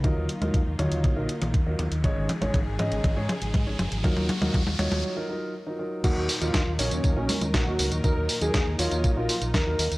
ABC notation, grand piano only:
X:1
M:4/4
L:1/16
Q:1/4=120
K:Ebm
V:1 name="Grand piano"
[G,EFB]2 z [G,EFB] z2 [G,EFd]3 [G,EFB] z3 [G,EFB] z2 | [A,DEd]2 z [A,DEd] z2 [A,DEe]3 [A,DEd] z3 [A,DEd] z2 | [G,EFB]2 z [G,EFB] z2 [G,EFd]3 [G,EFB] [G,EFB]2 z [G,EFB] [G,EFB]2 | [G,B,EB]2 z [G,B,EB] z2 [G,B,Ed]3 [G,B,EB] z3 [G,B,EB] z2 |
[G,B,EB]2 z [G,B,EB] z2 [G,B,Ed]3 [G,B,EB] z3 [G,B,EB] z2 |]